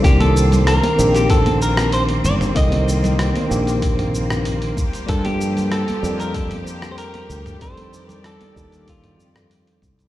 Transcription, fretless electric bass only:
\new Staff \with { instrumentName = "Fretless electric bass" } { \clef bass \time 4/4 \key c \dorian \tempo 4 = 95 c,4 r8 bes,,2 g,,8 | c,4 r8 bes,,2 r8 | g,4 r8 f,2 d,8 | f,4 r8 ees,4 f,4 c,8 | }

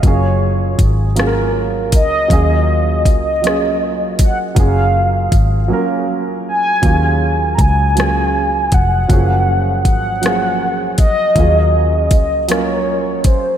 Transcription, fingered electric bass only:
\new Staff \with { instrumentName = "Fingered electric bass" } { \clef bass \time 6/8 \key ees \minor \tempo 4. = 53 ges,,4 aes,,4. des,8 | ees,4 des,4. f,,8 | ges,,4 aes,,8 r4. | ees,4 des,4. f,,8 |
ges,,4 aes,,4. des,8 | ees,4 des,4. r8 | }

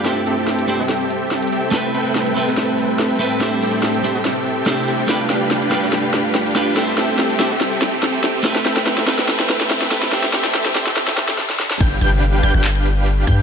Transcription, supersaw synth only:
\new Staff \with { instrumentName = "Supersaw synth" } { \time 4/4 \key c \major \tempo 4 = 143 <c' g' a' e'' g''>16 r16 <c' g' a' e'' g''>4 <c' g' a' e'' g''>16 <c' g' a' e'' g''>4.~ <c' g' a' e'' g''>16 <c' g' a' e'' g''>8 | <c' a' b' e'' g''>16 r16 <c' a' b' e'' g''>4 <c' a' b' e'' g''>16 <c' a' b' e'' g''>4.~ <c' a' b' e'' g''>16 <c' a' b' e'' g''>8 | <c' g' a' e'' g''>16 r16 <c' g' a' e'' g''>4 <c' g' a' e'' g''>16 <c' g' a' e'' g''>4.~ <c' g' a' e'' g''>16 <c' g' a' e'' g''>8 | <d' g' b' f'' g''>16 r16 <d' g' b' f'' g''>4 <d' g' b' f'' g''>16 <d' g' b' f'' g''>4.~ <d' g' b' f'' g''>16 <d' g' b' f'' g''>8 |
<c' g' a' e'' g''>16 r16 <c' g' a' e'' g''>4 <c' g' a' e'' g''>16 <c' g' a' e'' g''>4.~ <c' g' a' e'' g''>16 <c' g' a' e'' g''>8 | <c' a' b' e'' g''>16 r16 <c' a' b' e'' g''>4 <c' a' b' e'' g''>16 <c' a' b' e'' g''>4.~ <c' a' b' e'' g''>16 <c' a' b' e'' g''>8 | <c' g' a' e'' g''>16 r16 <c' g' a' e'' g''>4 <c' g' a' e'' g''>16 <c' g' a' e'' g''>4~ <c' g' a' e'' g''>16 r4 | <d' g' b' f'' g''>16 r16 <d' g' b' f'' g''>4 <d' g' b' f'' g''>16 <d' g' b' f'' g''>4.~ <d' g' b' f'' g''>16 <d' g' b' f'' g''>8 | }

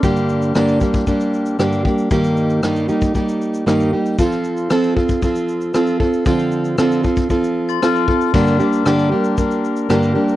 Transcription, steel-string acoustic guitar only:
\new Staff \with { instrumentName = "Steel-string acoustic guitar" } { \time 4/4 \key g \minor \tempo 4 = 116 <g, d g bes d' g'>4 <g, d g bes d' g'>8 <g bes d' g'>8 <g bes d' g'>4 <g, d g bes d' g'>8 <g bes d' g'>8 | <g, ees g bes ees' g'>4 <g, ees g bes ees' g'>8 <g bes ees' g'>8 <g bes ees' g'>4 <g, ees g bes ees' g'>8 <g bes ees' g'>8 | <f c' f' a'>4 <f c' f' a'>8 <c' f' a'>8 <f c' f' a'>4 <f c' f' a'>8 <c' f' a'>8 | <d f c' f' a'>4 <d f c' f' a'>8 <c' f' a'>8 <f c' f' a'>4 <f c' f' a'>8 <c' f' a'>8 |
<g, d g bes d' g'>8 <g bes d' g'>8 <g, d g bes d' g'>8 <g bes d' g'>8 <g bes d' g'>4 <g, d g bes d' g'>8 <g bes d' g'>8 | }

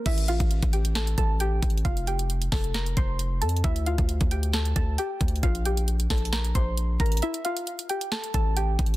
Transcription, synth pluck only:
\new Staff \with { instrumentName = "Synth pluck" } { \time 4/4 \key a \phrygian \tempo 4 = 134 <e' e''>8 <f' f''>8 r8 <g' g''>8 <a' a''>8 <a' a''>8 <g' g''>8 r8 | <f' f''>8 <g' g''>8 r8 <a' a''>8 <bes' bes''>8 <c'' c'''>4 <a' a''>8 | <e' e''>8 <f' f''>8 r8 <g' g''>8 <a' a''>8 <a' a''>8 <g' g''>8 r8 | <f' f''>8 <g' g''>8 r8 <a' a''>8 <bes' bes''>8 <c'' c'''>4 <bes' bes''>8 |
<e' e''>8 <f' f''>8 r8 <g' g''>8 <a' a''>8 <a' a''>8 <g' g''>8 r8 | }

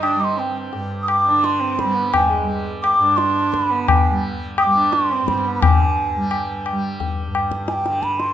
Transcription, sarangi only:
\new Staff \with { instrumentName = "Sarangi" } { \time 4/4 \key g \major \tempo 4 = 86 d'16 ees'16 c'8 r8. d'8 c'8 b8 aes8 r16 | r16 d'4 b4 r8 d'8 c'8 b16~ | b16 r2. r8. | }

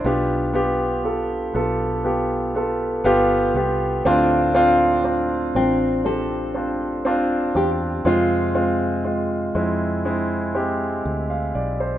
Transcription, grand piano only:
<<
  \new Staff \with { instrumentName = "Grand piano" } { \time 4/4 \key g \mixolydian \tempo 4 = 60 <b f' g'>8 <b f' g'>8 <b f' a'>8 <b f' a'>8 <b f' g'>8 <b f' a'>8 <b f' g'>8 <b f' g'>8 | <c' d' f'>8 <c' d' f'>8 <c' d' f'>8 <c' d' f'>8 <c' d' g'>8 <c' d' f'>8 <c' d' f'>8 <c' d' f'>8 | <aes c' f'>8 <aes c' f'>8 <aes c' f'>8 <aes c' e'>8 <aes c' e'>8 <aes c' g'>8 r16 f''16 d''16 c''16 | }
  \new Staff \with { instrumentName = "Grand piano" } { \clef bass \time 4/4 \key g \mixolydian b,4. r2 r8 | a,4. r2 r8 | c4. r2 r8 | }
>>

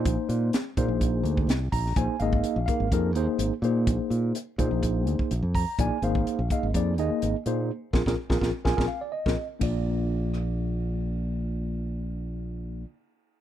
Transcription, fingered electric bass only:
\new Staff \with { instrumentName = "Fingered electric bass" } { \clef bass \time 4/4 \key bes \mixolydian \tempo 4 = 125 bes,,16 r16 bes,8 r8 bes,16 bes,,8. d,8 c,8 bes,,8 | bes,,16 r16 aes,,8 r16 bes,,16 r16 aes,,16 f,8 ees,16 r16 aes,,16 r16 bes,8 | bes,,16 r16 bes,8 r8 bes,16 bes,,8. d,16 r16 bes,,16 f,8 r16 | bes,,16 r16 aes,,8 r16 bes,,16 r16 aes,,16 f,8 ees,16 r16 aes,,16 r16 bes,8 |
r8 bes,,16 bes,,16 r16 bes,,16 bes,,16 r16 bes,,16 bes,,16 r8. bes,,16 r8 | bes,,1~ | bes,,1 | }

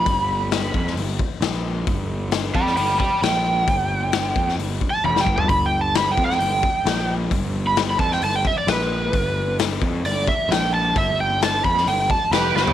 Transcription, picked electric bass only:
\new Staff \with { instrumentName = "Picked electric bass" } { \clef bass \time 4/4 \key f \lydian \tempo 4 = 132 g,,4. f,8 g,,8 r8 bes,,4 | g,,4. f,8 g,,8 r8 bes,,4 | g,,4. f,8 g,,8 r8 f,,8 g,,8 | g,,4. f,8 g,,8 r8 bes,,4 |
g,,4. f,8 g,,8 r8 bes,,4 | g,,4. f,8 g,,8 r8 bes,,4 | g,,4. f,8 g,,8 r8 f,,8 g,,8 | }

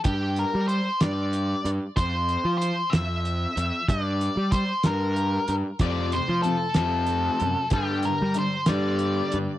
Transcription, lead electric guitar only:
\new Staff \with { instrumentName = "Lead electric guitar" } { \time 6/8 \key g \dorian \tempo 4. = 62 g'8 bes'8 c''8 d''4 r8 | c''4 c''8 e''4. | d''4 c''8 bes'4 r8 | d''8 c''8 a'2 |
g'8 bes'8 c''8 d''4 r8 | }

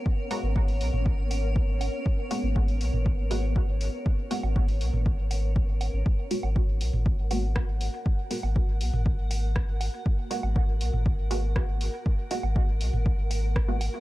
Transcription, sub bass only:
\new Staff \with { instrumentName = "Sub bass" } { \clef bass \time 4/4 \key gis \minor \tempo 4 = 120 r8. gis,,8. b,,16 gis,,2 r16 | r8. gis,,8. b,,16 gis,,2 r16 | r8. gis,,8. b,,16 gis,,2 gis,,16 | r8. gis,,8. b,,16 gis,,2 r16 |
r8. gis,,8. b,,16 gis,,2 r16 | r8. gis,,8. b,,16 gis,,2 r16 | r8. gis,,8. b,,16 gis,,2 r16 | }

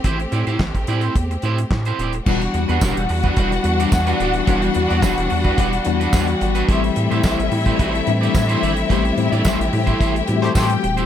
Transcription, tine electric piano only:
\new Staff \with { instrumentName = "Tine electric piano" } { \time 4/4 \key e \minor \tempo 4 = 109 r1 | <e g b d' f' fis'>4. r4 <e g b d' fis'>4. | <e g b d' fis'>4. r4 <e g b d' fis'>4. | <e g a c' g'>4. r4 <e g a c' d'>4. |
<e g a b c' g'>4. r4 <e g a c' fis' g'>4. | }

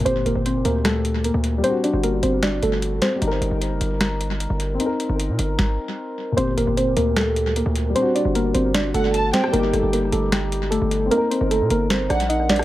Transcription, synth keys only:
\new Staff \with { instrumentName = "Synth keys" } { \time 4/4 \key g \minor \tempo 4 = 152 <c' c''>8 <bes bes'>8 <c' c''>8 <bes bes'>8 <a a'>4 <bes bes'>4 | <c' c''>8 <d' d''>8 <bes bes'>8 <c' c''>8 <d' d''>8 <a a'>4 <c' c''>8 | r1 | r1 |
<c' c''>8 <bes bes'>8 <c' c''>8 <bes bes'>8 <a a'>4 <bes bes'>4 | <c' c''>8 <d' d''>8 <bes bes'>8 <c' c''>8 <d' d''>8 <a a'>4 <c' c''>8 | <bes bes'>8 <a a'>8 <bes bes'>8 <a a'>8 <g g'>4 <a a'>4 | <bes bes'>8 <c' c''>8 <a a'>8 <bes bes'>8 <c' c''>8 <d' d''>8 <ees' ees''>8 <d' d''>8 | }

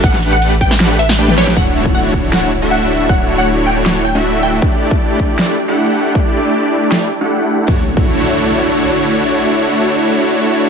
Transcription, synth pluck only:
\new Staff \with { instrumentName = "Synth pluck" } { \time 4/4 \key d \major \tempo 4 = 157 fis''8 r16 fis''8 r16 g''16 r8. e''16 r8. cis''16 r16 | fis''8 r8 fis''8 r8 fis''8 r8 fis''8 r8 | fis''8 r16 fis''8 r16 g''16 r8. g''16 r8. g''16 r16 | r1 |
r1 | r1 | r1 | }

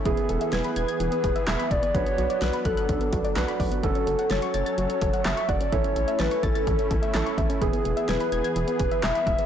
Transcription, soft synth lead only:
\new Staff \with { instrumentName = "Soft synth lead" } { \time 4/4 \key e \mixolydian \tempo 4 = 127 gis'8 a'8 b'4 b'4 e''8 d''8 | cis''4 b'8 a'2 r8 | a'4 cis''8 cis''8 cis''4 e''8 d''8 | cis''4 b'8 a'2 r8 |
gis'4 b'4 b'4 e''4 | }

